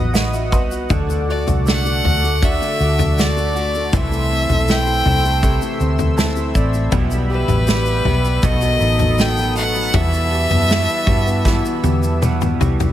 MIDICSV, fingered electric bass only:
0, 0, Header, 1, 2, 480
1, 0, Start_track
1, 0, Key_signature, 1, "minor"
1, 0, Tempo, 759494
1, 570, Time_signature, 4, 2, 24, 8
1, 2486, Tempo, 750939
1, 6806, Tempo, 766284
1, 8204, End_track
2, 0, Start_track
2, 0, Title_t, "Fingered electric bass"
2, 0, Program_c, 0, 33
2, 0, Note_on_c, 0, 33, 81
2, 330, Note_off_c, 0, 33, 0
2, 330, Note_on_c, 0, 36, 82
2, 554, Note_off_c, 0, 36, 0
2, 571, Note_on_c, 0, 38, 91
2, 906, Note_off_c, 0, 38, 0
2, 931, Note_on_c, 0, 36, 83
2, 1267, Note_off_c, 0, 36, 0
2, 1293, Note_on_c, 0, 38, 90
2, 1627, Note_off_c, 0, 38, 0
2, 1771, Note_on_c, 0, 38, 85
2, 2461, Note_off_c, 0, 38, 0
2, 2484, Note_on_c, 0, 36, 96
2, 2819, Note_off_c, 0, 36, 0
2, 2844, Note_on_c, 0, 35, 78
2, 3178, Note_off_c, 0, 35, 0
2, 3204, Note_on_c, 0, 36, 94
2, 3538, Note_off_c, 0, 36, 0
2, 3681, Note_on_c, 0, 38, 83
2, 4132, Note_off_c, 0, 38, 0
2, 4159, Note_on_c, 0, 33, 92
2, 4380, Note_off_c, 0, 33, 0
2, 4394, Note_on_c, 0, 35, 106
2, 4729, Note_off_c, 0, 35, 0
2, 4751, Note_on_c, 0, 33, 86
2, 5090, Note_off_c, 0, 33, 0
2, 5115, Note_on_c, 0, 35, 95
2, 5340, Note_off_c, 0, 35, 0
2, 5360, Note_on_c, 0, 35, 113
2, 5583, Note_off_c, 0, 35, 0
2, 5599, Note_on_c, 0, 33, 92
2, 6297, Note_off_c, 0, 33, 0
2, 6325, Note_on_c, 0, 40, 104
2, 6660, Note_off_c, 0, 40, 0
2, 6685, Note_on_c, 0, 42, 79
2, 6907, Note_off_c, 0, 42, 0
2, 7044, Note_on_c, 0, 43, 82
2, 7376, Note_off_c, 0, 43, 0
2, 7522, Note_on_c, 0, 40, 87
2, 7980, Note_off_c, 0, 40, 0
2, 8005, Note_on_c, 0, 36, 78
2, 8204, Note_off_c, 0, 36, 0
2, 8204, End_track
0, 0, End_of_file